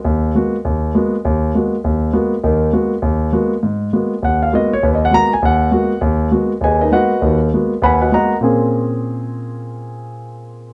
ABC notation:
X:1
M:4/4
L:1/16
Q:"Swing" 1/4=201
K:Abdor
V:1 name="Grand piano"
z16 | z16 | z16 | z8 g2 f2 e2 d2 |
(3c2 e2 g2 b2 a2 g8 | z8 [Acea]2 [EBce]2 [Gceg]4- | [Gceg]2 z6 [cgac']2 [Gceg]2 [Begb]3 z | [B,,B,=CDA]16- |
[B,,B,=CDA]16 |]
V:2 name="Grand piano"
E,,4 [A,B,CG]2 z2 E,,4 [A,B,CG]2 z2 | E,,4 [A,B,CG]2 z2 E,,4 [A,B,CG]2 z2 | [E,,E,]4 [A,B,CG]2 z2 E,,4 [A,B,CG]2 z2 | A,,4 [A,B,CG]2 z2 E,,4 [A,B,CG]2 z2 |
E,,4 [A,B,CG]2 z2 E,,4 [A,B,CG]2 z2 | E,,4 [A,B,CG]2 z2 E,,4 [A,B,C]2 z2 | [E,,E,]4 [A,B,CG]2 z2 E,,4 [A,B,CG]2 z2 | z16 |
z16 |]